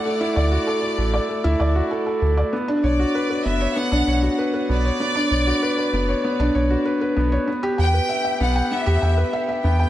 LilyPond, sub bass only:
\new Staff \with { instrumentName = "Sub bass" } { \clef bass \time 4/4 \key b \minor \tempo 4 = 97 r8 d,16 r8. a,,16 r8 d,16 d,16 r8. d,16 r16 | r8 b,,16 r8. fis,,16 r8 b,,16 b,,16 r8. b,,16 r16 | r8 b,,16 r8. fis,,16 r8 b,,16 b,,16 r8. b,,16 r16 | r8 e,16 r8. b,,16 r8 e,16 e,16 r8. e,16 r16 | }